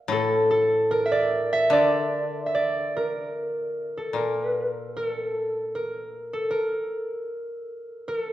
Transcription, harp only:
0.12 A4
0.51 A4
0.91 A#4
1.06 E5
1.12 D5
1.53 E5
1.73 D5
2.46 E5
2.55 D5
2.97 A#4
3.97 A4
4.16 A#4
4.97 A4
5.75 A#4
6.33 A4
6.51 A#4
8.08 A4

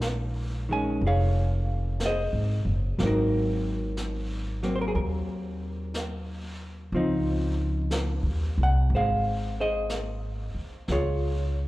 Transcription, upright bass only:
Already playing: A#1
1.01 F1
2.33 G#1
2.65 F#1
2.98 G#1
4.95 D#2
6.92 C#2
8.23 D#2
8.58 C2
8.90 G#1
10.54 muted upright bass stroke
10.88 C#2

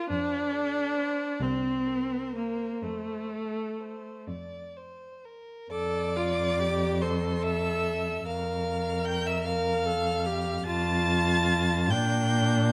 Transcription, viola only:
0.10 D4
1.42 C4
2.35 A#3
2.84 A3
5.72 A4
6.16 F4
6.60 G4
7.02 A4
8.26 A#4
9.47 A#4
9.85 A4
10.26 G4
10.67 F4
11.92 D4

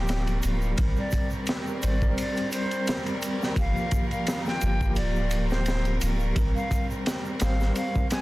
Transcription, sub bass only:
Already playing: D1
0.43 D1
0.79 G#1
1.83 G#1
3.56 G1
4.62 G1
4.97 D1
6.02 D1
6.36 G#1
7.41 G#1

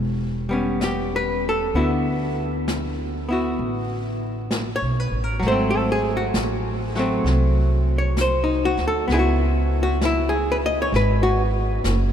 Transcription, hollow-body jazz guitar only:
Already playing: G3 B3 C#4
0.49 G3 B3 C#4
0.84 G4
1.16 B4
1.49 A4
1.75 D3 B3 E4 F#4
3.29 B3 E4 F#4
4.76 C#5
5.00 B4
5.24 A#4
5.40 F#3
5.47 A3 C5
5.52 C4
5.70 A4
5.92 G#4
6.17 F#4
6.96 F#3 A3 C4
7.98 C#5
8.21 C5
8.44 D#4
8.65 F#4
8.88 A4
9.08 B3
9.12 E4 G#4
9.19 F#4
9.83 F#4
10.05 E4
10.29 G#4
10.52 B4
10.66 D#5
10.82 C#5
10.96 B4
11.23 F#4

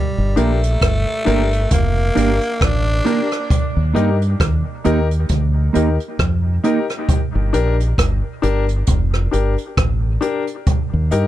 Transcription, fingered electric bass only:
0.18 G1
0.37 A#1
0.82 G1
1.27 G1
1.72 F1
2.17 G1
2.61 A1
3.77 D#2
3.96 G2
4.41 D#2
4.86 D#2
5.30 D2
5.76 D#2
6.20 F2
7.35 G1
7.54 A#1
7.99 G1
8.43 G1
8.88 F1
9.34 G1
9.78 A1
10.94 D#2
11.13 G2

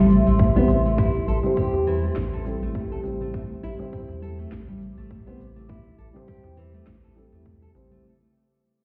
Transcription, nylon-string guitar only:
0.27 A3
0.56 B3
0.86 A3
0.98 E4
1.28 A4
1.57 G4
1.87 E3
2.03 A3
2.33 A4
2.63 A3
2.92 A4
3.21 A3
3.34 A3
3.63 E4
3.93 C4
4.22 A4
4.39 A3
4.68 G3
4.98 A3
5.27 B3
5.56 A3
5.69 E4
5.98 A4
6.28 G4
6.57 E3
6.74 A3
7.04 A4
7.32 A3
7.62 A4
7.92 A3

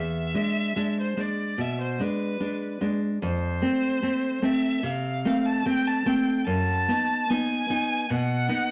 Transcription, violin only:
Already playing: E5
1.00 C5
1.21 D5
1.61 E5
1.80 C5
2.02 B4
3.24 C5
4.45 E5
4.84 F5
5.46 A5
5.66 G5
5.87 A5
6.07 G5
6.47 A5
7.30 G#5
8.10 F#5

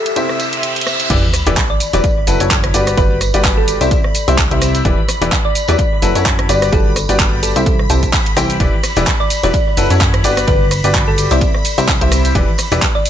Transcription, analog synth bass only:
1.10 E1
1.47 E1
1.93 E1
2.27 F#1
2.40 F#1
2.74 G1
2.98 G1
3.34 G1
3.81 C2
4.28 C2
4.51 C2
4.85 E1
5.22 E1
5.69 E2
6.02 F#1
6.15 F#2
6.49 G1
6.73 G1
7.09 G1
7.56 C2
7.90 C2
8.37 C2
8.60 E1
8.97 E1
9.43 E1
9.77 F#1
9.90 F#2
10.24 G1
10.48 G1
10.84 G1
11.31 C2
11.78 C2
12.01 C2
12.35 E1
12.72 E1

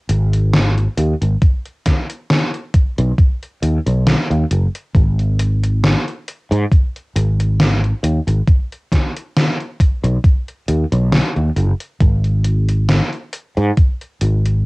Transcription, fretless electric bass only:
0.09 G#1
0.97 D#2
1.21 G#1
2.98 B1
3.62 D#2
3.86 B1
4.31 D#2
4.51 F#1
4.95 G#1
6.51 G#2
7.15 G#1
8.03 D#2
8.27 G#1
10.04 B1
10.68 D#2
10.92 B1
11.36 D#2
11.56 F#1
12.01 G#1
13.57 G#2
14.21 G#1

